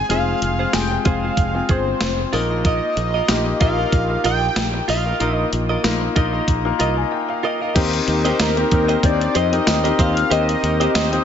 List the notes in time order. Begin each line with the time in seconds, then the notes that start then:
Already playing: G#3 C4 D#4 G#4
0.09 F1 G#3 C4 F4 G#4 C5 F5, closed hi-hat
0.42 F1, muted clean electric guitar stroke, closed hi-hat
0.59 F4 G#4 C5
0.73 F1 G#3 C4 F4 G#4 G5, muted clean electric guitar stroke, snare, closed hi-hat, tambourine
0.91 muted clean electric guitar stroke
1.00 G5
1.05 F1 G#3 C4 F4 G#4 C5 F5, kick, closed hi-hat
1.23 F4 G#4 C5
1.37 F1, kick, closed hi-hat
1.54 G#3 C4 F4 G#4, muted clean electric guitar stroke
1.69 G1 F4 G#4 C5, kick, closed hi-hat
1.87 muted clean electric guitar stroke
2.01 F1, muted clean electric guitar stroke, snare, closed hi-hat, tambourine
2.19 muted clean electric guitar stroke
2.32 A#1 A#3 D#4 F4 A#4 D#5, open hi-hat
2.50 F4 A#4 D#5
2.64 F4 A#4 D#5, kick, closed hi-hat
2.97 A#1, muted clean electric guitar stroke, closed hi-hat
3.14 F4 A#4 D#5
3.28 A#1 A#3 D#4 F4 G4, muted clean electric guitar stroke, snare, closed hi-hat, tambourine
3.46 muted clean electric guitar stroke
3.60 A#1 A#3 D#4 F4 A#4 D#5 F5, kick, closed hi-hat
3.78 F4 A#4 D#5
3.92 A#1, kick, closed hi-hat
4.10 muted clean electric guitar stroke
4.24 A#1 F4 A#4 D#5 G5, closed hi-hat
4.42 muted clean electric guitar stroke
4.56 A#1, muted clean electric guitar stroke, snare, closed hi-hat, tambourine
4.74 muted clean electric guitar stroke
4.88 A#1 F4 A#4 D#5 F5, open hi-hat
5.05 F4 A#4 D#5
5.20 A#1 A#3 D#4 F4 A#4 D#5, closed hi-hat
5.35 D#5
5.52 A#1, muted clean electric guitar stroke, closed hi-hat
5.69 F4 A#4 D#5
5.83 A#1 A#3 D#4 F4 A#4, snare, closed hi-hat, tambourine
6.01 muted clean electric guitar stroke
6.15 A#1 A#3 D#4 F4 A#4 D#5, kick, closed hi-hat
6.33 F4 A#4 D#5
6.48 A#1, kick, closed hi-hat
6.65 A#3 D#4 F4 A#4, muted clean electric guitar stroke
6.79 C2 F4 A#4 D#5, closed hi-hat
6.97 G#5, muted clean electric guitar stroke
7.11 G5, muted clean electric guitar stroke
7.29 F5, muted clean electric guitar stroke
7.43 F4 A#4 D#5
7.61 F4 A#4 D#5 F5
7.75 D#2 C4 D#4 G4 A#4 C5 D#5, kick, closed hi-hat, crash
7.93 muted clean electric guitar stroke, closed hi-hat
8.07 D#2 D#4 G4 A#4, muted clean electric guitar stroke, closed hi-hat
8.24 C4 D#4 G4 A#4 C5 D#5, closed hi-hat
8.39 D#2 G4 A#4 C5 D#5, snare, closed hi-hat, tambourine
8.57 C4 D#4 G4 A#4, muted clean electric guitar stroke, closed hi-hat
8.71 D#2 C4 D#4 G4, muted clean electric guitar stroke, kick, closed hi-hat
8.88 G4 C5 D#5, closed hi-hat
9.03 D#2 C4 D#4 G4 C5 D5, muted clean electric guitar stroke, kick, closed hi-hat
9.21 muted clean electric guitar stroke, closed hi-hat
9.35 F2 G4 C5 D#5, closed hi-hat
9.52 C4 D#4 G4 A#4, muted clean electric guitar stroke, closed hi-hat
9.67 D#2, muted clean electric guitar stroke, snare, closed hi-hat, tambourine
9.84 C4 D#4 G4 A#4 C5 D#5, closed hi-hat
9.98 D#2 G4 C5 D#5 F5, kick, closed hi-hat
10.16 muted clean electric guitar stroke, closed hi-hat
10.30 D#2 C4 D#4 G4 A#4 C5 D#5, closed hi-hat
10.48 muted clean electric guitar stroke, closed hi-hat
10.63 D#2 D#4 G4 A#4, muted clean electric guitar stroke, closed hi-hat
10.80 C4 D#4 G4 A#4 C5 D#5, closed hi-hat
10.94 D#2 G4 C5 D#5, snare, closed hi-hat, tambourine
11.11 C4 D#4 G4 A#4 C5, muted clean electric guitar stroke, closed hi-hat